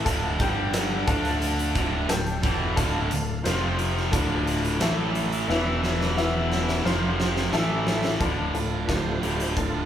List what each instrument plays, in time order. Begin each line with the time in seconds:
0.05 picked electric bass D1, overdriven electric guitar D2 A2 D3, honky-tonk piano A4 D5 F5, kick, closed hi-hat
0.38 picked electric bass G1, overdriven electric guitar G2 D3 G3, tonewheel organ D4 G4 D5, honky-tonk piano G4 D5 G5, kick, closed hi-hat
0.74 snare, closed hi-hat
1.07 picked electric bass D2, overdriven electric guitar D3 A3 D4, tonewheel organ D4 A4 F5, honky-tonk piano A4 D5 F5, kick, closed hi-hat
1.25 snare, closed hi-hat
1.42 closed hi-hat
1.59 closed hi-hat
1.75 picked electric bass D1, overdriven electric guitar D2 A2 D3, kick, closed hi-hat
2.08 picked electric bass D1, overdriven electric guitar D2 A2, honky-tonk piano A4 D5 G5, snare, closed hi-hat
2.27 closed hi-hat
2.43 picked electric bass E1, overdriven electric guitar E2 B2 E3, kick, closed hi-hat
2.76 picked electric bass D1, overdriven electric guitar D2 A2 D3, honky-tonk piano A4 D5 F5, kick, closed hi-hat
3.11 picked electric bass D1, overdriven electric guitar D2 A2, closed hi-hat
3.43 picked electric bass F1, overdriven electric guitar F2 C3 F3, honky-tonk piano F4 C5 F5, tonewheel organ F4 C5 F5, snare, closed hi-hat
3.79 closed hi-hat
3.97 snare
4.12 picked electric bass D1, overdriven electric guitar D2 A2 D3, tonewheel organ D4 F4 A4 F5, honky-tonk piano F4 A4 D5, kick, closed hi-hat
4.47 closed hi-hat
4.64 closed hi-hat
4.81 picked electric bass A1, overdriven electric guitar A2 E3 A3, honky-tonk piano E4 A4 E5, tonewheel organ E4 A4 E5, snare, closed hi-hat
5.15 closed hi-hat
5.32 closed hi-hat
5.47 picked electric bass E1, overdriven electric guitar E2 B2 E3, tonewheel organ E4 B4 E5, honky-tonk piano E4 B4 E5, snare
5.84 snare
6.01 snare
6.17 honky-tonk piano E4 B4 E5, snare
6.52 snare
6.69 snare
6.83 picked electric bass F1, overdriven electric guitar F2 C3 F3, tonewheel organ F4 C5 F5, honky-tonk piano F4 C5 F5, snare
7.20 snare
7.37 snare
7.52 picked electric bass A1, overdriven electric guitar A2 E3 A3, tonewheel organ E4 A4 E5, honky-tonk piano E4 A4 E5, snare
7.87 snare
8.04 snare
8.20 picked electric bass D1, overdriven electric guitar D2 A2 D3, honky-tonk piano F4 A4 D5, kick, closed hi-hat
8.53 picked electric bass D1, overdriven electric guitar D2 A2, tonewheel organ F3 A3 D4, honky-tonk piano F4 A4 F5, closed hi-hat
8.85 picked electric bass D1, overdriven electric guitar D2, honky-tonk piano F4 A4 D5, tonewheel organ B4, kick
8.89 overdriven electric guitar A2, tonewheel organ G4 C5, snare, closed hi-hat
9.22 picked electric bass D1, overdriven electric guitar D2 A2 D3, tonewheel organ G4 C5, closed hi-hat
9.40 closed hi-hat
9.56 picked electric bass D1, overdriven electric guitar D2 A2, tonewheel organ F4 A4, honky-tonk piano F4 A4 D5, kick, closed hi-hat